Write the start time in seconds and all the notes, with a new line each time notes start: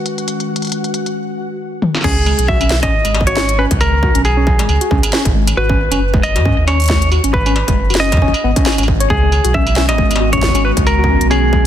Already playing: D#3 G#3 C#4 F#4 B4 F#5
0.06 closed hi-hat
0.18 closed hi-hat
0.28 closed hi-hat
0.40 closed hi-hat
0.56 closed hi-hat
0.62 closed hi-hat
0.65 closed hi-hat
0.67 closed hi-hat
0.69 closed hi-hat
0.72 closed hi-hat
0.84 closed hi-hat
0.94 closed hi-hat
1.06 closed hi-hat
1.82 high tom
1.95 snare
1.97 snare
2.01 C#2 C#4, kick, snare
2.04 G#4, snare, crash
2.08 snare
2.12 snare
2.26 G#3, struck metal
2.39 B1, closed hi-hat
2.48 F#4 E5, kick
2.61 C#4, struck metal
2.70 snare
2.83 G#1 C#4 D#5, kick, closed hi-hat, struck metal
3.05 G#1 G#3, closed hi-hat, struck metal
3.15 struck metal
3.21 kick
3.27 F#4 C#5, closed hi-hat
3.37 C#4, snare
3.49 closed hi-hat
3.59 C#4 B4
3.71 C#2, kick, closed hi-hat
3.81 G#3 A#4, struck metal
4.03 F#4, kick
4.15 B1 C#4, closed hi-hat
4.25 G#4, struck metal
4.37 C#4
4.47 kick
4.59 G#1 G#3, closed hi-hat, struck metal
4.69 C#2, struck metal
4.81 F#4, closed hi-hat
4.91 C#2 C#4, kick
5.03 closed hi-hat, struck metal
5.13 C#4, snare
5.25 G#1, kick, closed hi-hat
5.35 G#3
5.47 closed hi-hat, struck metal
5.57 G#1 F#4 B4
5.69 C#4, kick
5.92 F#1 C#4, closed hi-hat, struck metal
6.14 G#3, kick
6.23 D#5, struck metal
6.36 G#2 F#4, closed hi-hat, struck metal
6.45 C#4, kick
6.58 D#2
6.67 C#4 C#5, struck metal
6.80 closed hi-hat
6.82 closed hi-hat
6.84 closed hi-hat
6.86 closed hi-hat
6.88 G#3, kick, snare, closed hi-hat
7.02 closed hi-hat
7.12 F#4, struck metal
7.24 G#1 C#4, closed hi-hat
7.34 B4, kick
7.46 C#4, struck metal
7.56 struck metal
7.68 F#1 G#3, kick, closed hi-hat
7.90 F#4, struck metal
7.95 snare
8.00 C#4 D#5
8.12 G#2, kick, closed hi-hat, struck metal
8.17 kick
8.22 G#1 C#4, kick
8.28 kick
8.34 struck metal
8.44 G#1 B3
8.56 C#4, kick, closed hi-hat
8.66 C#4, snare, struck metal
8.72 struck metal
8.78 G#1 C#4, closed hi-hat, struck metal
8.83 struck metal
8.88 kick
9.00 C#5, closed hi-hat
9.10 C#2 D#3 G#4, kick
9.22 G#3
9.31 G#3, struck metal
9.43 B1 B3 C#4 F#4, closed hi-hat
9.54 C#4 E5, kick
9.59 F#4
9.67 struck metal
9.76 C#4, snare
9.89 G#1 D#5, closed hi-hat, struck metal
9.98 G#3, kick
10.11 G#1, closed hi-hat, struck metal
10.16 struck metal
10.20 F#4
10.33 C#4 C#5, kick, closed hi-hat
10.38 kick
10.42 kick, snare
10.49 kick
10.55 C#4, closed hi-hat, struck metal
10.65 B4
10.77 C#2 G#3, kick, closed hi-hat
10.87 A#4, struck metal
10.99 F#4
11.04 kick
11.09 C#4
11.21 B1, closed hi-hat
11.31 C#4 G#4, struck metal
11.53 G#3, kick